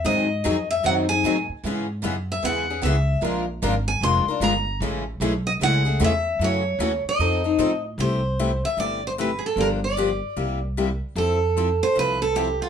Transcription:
0.05 G#2 D#3 F#3 C4 D#4 G#4 D#5
0.44 F2 D#3 F#3 C4 D#4 G#4
0.71 E5
0.83 F#2 D#3 F#3 C4 D#4 G#4 F#5
1.09 C4 D#4 G#4 G#5
1.24 A2 D#3 F#3 C4 D#4 G#4
1.49 muted upright bass stroke
1.64 G#2 C#3 E3 G#3 B3 C#4 E4 G#4
2.02 F#2 C#3 E3 G#3 B3 C#4 E4 G#4
2.32 E5
2.43 E2 C#3 E3 G#3 B3 C#4 E4 G#4 F#5
2.70 B3 C#4 G#4
2.82 C#2 C#3 E3 G#3 B3 C#4 E4 G#4 E5
3.22 A#1 F3 G#3 D4 F4 A#4
3.62 G#1 F3 G#3 D4 F4 A#4
3.88 G#5
4.01 F1 F3 G#3 D4 F4 C6
4.05 A#4
4.28 D4 F4 A#4
4.40 G1 F3 G#3 D4 F4 A#4 A#5
4.80 A1 C#3 E3 G#3 A3 C#4 E4 G#4 A4
5.20 B1 C#3 E3 G#3 A3 C#4 E4 G#4 A4
5.47 D#5
5.60 C#2 C#3 E3 G#3 A3 C#4 E4 G#4 A4 F#5
5.85 A3 C#4 G#4
6.00 E2 C#3 E3 G#3 A3 C#4 E4 G#4 A4
6.04 E5
6.39 F#2 C#3 E3 F#3 A3 C#4 E4 F#4 A4
6.44 C#5
6.79 D#2 C#3 E3 F#3 A3 C#4 E4 F#4 A4
7.05 muted upright bass stroke
7.09 D#5
7.19 F2 F3 C4 D#4 A4
7.44 C4 D#4 A4
7.58 A2 F3 C4 D#4 A4
7.98 C2 C3 E3 A3 E4 G4 C5
8.39 C3 E3 A3 E4 G4
8.65 E5
8.77 G1 C3 E3 A3 E4 G4 D5
9.07 C5
9.18 C3 E3 A3 E4 G4 B4
9.39 G#4
9.46 A4
9.56 G1 D3 F3 A#3 D4 G4
9.60 A#4
9.84 D5
9.97 D3 F3 A#3 D4 G4
10.36 C2 C3 G3 A#3 E4 G4
10.77 C3 G3 A#3 E4 G4
11.15 F2 F3 C4 E4 A4
11.57 F3 C4 E4 A4
11.83 C5
11.95 C2 F3 C4 E4 A4 B4
12.22 A4
12.35 F3 C4 E4 G4 A4
12.62 F4

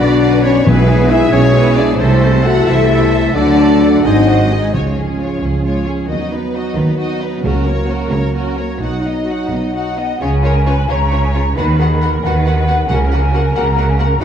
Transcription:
0.00 B1 B2 D3 F#3 D4 F#4 D5 B5
0.21 D4 B4 F#5
0.42 C#4 F#4 C#5 D5 B5
0.64 B1 B2 E3 G#3 B3 E4 G#4 B4 E5 G#5
0.88 G#4 E5 G#5
1.10 E4 B4 E5 G#5
1.32 B1 B2 C#4 G#4 C#5 E5 G#5
1.54 E4 B4 E5 G#5
1.76 D4 G#4 D5 E5 G#5
1.98 C2 C3 E3 A3 C4 E4 A4 C5 E5
2.22 E4 A4 C5 A5
2.44 E4 F#4 A4 E5 F#5
2.67 C2 C3 E3 A3 E4 A4 C5 E5 A5
2.90 E4 A4 E5
3.12 E4 A4 C5 A5
3.35 D2 D3 F#3 A3 D4 A4 D5 F#5
3.57 F#4 A4 D5 A5
3.70 A4
3.81 D4 A4 D5 F#5
4.04 G#1 G#2 F#3 C4 D#4 G#4 C5 D#5 F#5 G#5
4.27 F#4 C5 F#5
4.50 D#4 G#4 D#5 G#5
4.74 C#2 C#3 F3 G#3 C#4 F4 C#5
4.96 C#4 G#4
5.18 G#3 F4 C#5
5.41 C#2 C#3 C#4 G#4
5.64 G#3 F4 C#5
5.87 C#4 G#4
6.09 D#2 D#3 F#3 B3 D#4 F#4 D#5
6.31 B3 D#4 B4
6.53 D#4 F#4 D#5
6.77 D#2 D#3 B3 D#4 B4
6.98 D#4 F#4 D#5
7.20 B3 D#4 B4
7.43 C#2 C#3 A#3 C#4 F#4 A#4
7.66 A#3 A#4 C#5
7.88 C#4 F#4 A#4
8.10 C#2 C#3 A#3 A#4 C#5
8.34 C#4 F#4 A#4
8.56 A#3 A#4 C#5
8.80 B1 B2 F#3 D#4 F#4 F#5
9.02 B3 D#4
9.06 D#5
9.26 D#4 F#4 F#5
9.50 B1 B2 B3 D#4 D#5 F#5
9.74 D#4 F#4 F#5
9.98 B3 D#4 D#5
10.20 C#2 C#3 C#4 F4 G#4 C#5 G#5
10.43 C#4 F4 A#4 C#5
10.66 C#4 F4 B4 C#5
10.89 C#2 C#3 C#4 F4 C#5 A#5
11.11 C#4 F4 C#5
11.24 G#5
11.34 C#4 F4 C#5 A#5
11.57 D#2 D#3 B3 F#4 B4 F#5 B5
11.79 B3 F#4 G#4 F#5
12.01 B3 F#4 A#4 F#5
12.23 D#2 D#3 B3 F#4 B4 F#5
12.46 B3 F#4 F#5
12.68 B3 F#4 F#5
12.89 C#2 C#3 A#3 F#4 A#4 F#5 G#5
13.11 A#3 F#4 F#5
13.32 A#3 F#4 F#5
13.54 C#2 C#3 A#3 F#4 F#5 A#5
13.77 A#3 F#4 F#5
13.89 G#5
13.99 A#3 F#4 F#5 A#5
14.20 B1 D#4 F#4 F#5 B5

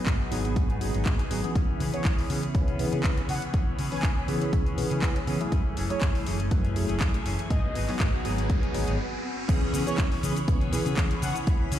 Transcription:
Already playing: F#4 B4 G#5
0.06 G#2 F#3 B3 D#4 G#4, kick, clap, closed hi-hat
0.31 G#1 F#3 B3 D#4 G#4, open hi-hat
0.44 B3 D#4 G#4, closed hi-hat
0.56 G#2, kick, closed hi-hat
0.69 B3 D#4 G#4, closed hi-hat
0.81 G#1 F#3 B3 D#4 G#4, open hi-hat
0.94 G#1 B3 D#4 G#4, closed hi-hat
1.05 F#3 B3 D#4 G#4, kick, clap, closed hi-hat
1.18 B3 D#4 G#4, closed hi-hat
1.30 G#1 F#3 B3 D#4 G#4, open hi-hat
1.44 E3 B3 C#4 G#4, closed hi-hat
1.55 C#2 E3 B3 C#4 E4 G#4 C#5 B5, kick, closed hi-hat
1.79 C#3 E3 B3 C#4 G#4, open hi-hat
1.93 E3 B3 C#4 G#4 C#5, muted fingered electric bass stroke, closed hi-hat
2.04 C#2 E3 B3 C#4 G#4, kick, clap, closed hi-hat
2.18 open hi-hat
2.29 C#3 E3 B3 C#4 G#4, open hi-hat
2.42 B3 C#4 G#4, closed hi-hat
2.54 C#2 E3 B3 C#4 C#5, kick, closed hi-hat
2.67 B3 C#4 G#4, closed hi-hat
2.79 C#3 E3 B3 C#4 G#4, open hi-hat
2.92 C#3 B3 C#4 G#4, closed hi-hat
3.03 C#2 E3 B3 C#4 G#4, kick, clap, closed hi-hat
3.17 B3 C#4 G#4, closed hi-hat
3.28 C#3 E3 B3 C#4 G#4 F#5, open hi-hat
3.42 closed hi-hat
3.53 C#2 E3 B3 C#4 G#4, kick, closed hi-hat
3.67 muted fingered electric bass stroke
3.78 C#3 E3 B3 C#4 G#4, open hi-hat
3.91 E3 B3 C#4 G#4 C#5 G#5, muted fingered electric bass stroke, open hi-hat
4.03 C#2 E3 B3 C#4 G#4, kick, clap, closed hi-hat
4.27 C#3 E3 B3 C#4 G#4, open hi-hat
4.41 B3 C#4 G#4, closed hi-hat
4.53 C#2, kick, closed hi-hat
4.65 B3 C#4 G#4, closed hi-hat
4.77 C#3 E3 B3 C#4 G#4, open hi-hat
4.90 C#3 B3 C#4 G#4, closed hi-hat
5.02 C#2 E3 B3 C#4 G#4, kick, clap, closed hi-hat
5.15 B3 C#4 G#4, closed hi-hat
5.26 C#3 E3 B3 C#4 G#4, open hi-hat
5.40 F#3 A3 E4 G#4, closed hi-hat
5.51 F#2 E3 A3 C#4 G#4 G#5, kick, closed hi-hat, riser
5.76 F#1 E3 A3 C#4 G#4, open hi-hat
5.89 F#3 A3 C#4 E4 G#4 C#5, muted fingered electric bass stroke, closed hi-hat
6.01 F#2 E3 A3 C#4 G#4, kick, clap, closed hi-hat
6.15 open hi-hat
6.25 F#1 E3 F#3 A3 C#4 E4 G#4, open hi-hat
6.39 A3 C#4 G#4, closed hi-hat
6.51 F#2 F#3 A3 E4 B4, kick, closed hi-hat
6.63 A3 C#4 G#4, closed hi-hat
6.76 F#1 F#3 A3 E4 G#4, open hi-hat
6.88 F#1 A3 C#4 G#4, closed hi-hat
7.00 F#2 E3 F#3 A3 C#4 E4 G#4, kick, clap, closed hi-hat
7.13 A3 C#4 G#4, closed hi-hat
7.25 F#1 E3 A3 C#4 G#4, open hi-hat
7.39 closed hi-hat
7.50 G#2 F#3 B3 D#4 F#4 G#4 B4 D#5, kick, closed hi-hat
7.64 muted fingered electric bass stroke
7.74 G#1 F#3 B3 D#4 G#4, open hi-hat
7.88 F#3 B3 D#4 G#4 C#5, muted fingered electric bass stroke, clap, open hi-hat
7.99 G#2 F#3 B3 D#4 G#4, kick, clap, closed hi-hat
8.24 G#1 F#3 B3 D#4 G#4, open hi-hat
8.37 B3 D#4 G#4, closed hi-hat
8.50 G#2, kick, closed hi-hat
8.62 B3 D#4 G#4, muted fingered electric bass stroke, closed hi-hat
8.74 G#1 F#3 B3 D#4 G#4, open hi-hat
8.87 G#1 B3 D#4 G#4, closed hi-hat
9.48 C#2 E3 B3 C#4 E4 G#4 C#5 B5, kick, closed hi-hat, crash, cabasa
9.73 C#3 E3 B3 C#4 G#4, open hi-hat, cabasa
9.86 E3 B3 C#4 G#4 C#5, muted fingered electric bass stroke, closed hi-hat, cabasa
9.98 C#2 E3 B3 C#4 G#4, kick, clap, closed hi-hat, cabasa
10.12 open hi-hat
10.22 C#3 E3 B3 C#4 G#4, open hi-hat, cabasa
10.36 closed hi-hat, cabasa
10.47 C#2 E3 B3 C#4 C#5, kick, closed hi-hat, cabasa
10.60 B3 C#4 G#4, closed hi-hat
10.72 C#3 E3 B3 C#4 G#4, open hi-hat, cabasa
10.85 C#3 B3 C#4 G#4, closed hi-hat, cabasa
10.97 C#2 E3 B3 C#4 G#4, kick, clap, closed hi-hat, cabasa
11.11 closed hi-hat
11.21 C#3 E3 B3 C#4 G#4 F#5, open hi-hat, cabasa
11.35 B3 C#4 G#4, closed hi-hat, cabasa
11.46 C#2 E3 B3 C#4 G#4, kick, closed hi-hat, cabasa
11.60 muted fingered electric bass stroke
11.71 C#3 E3 B3 C#4 G#4, open hi-hat, cabasa

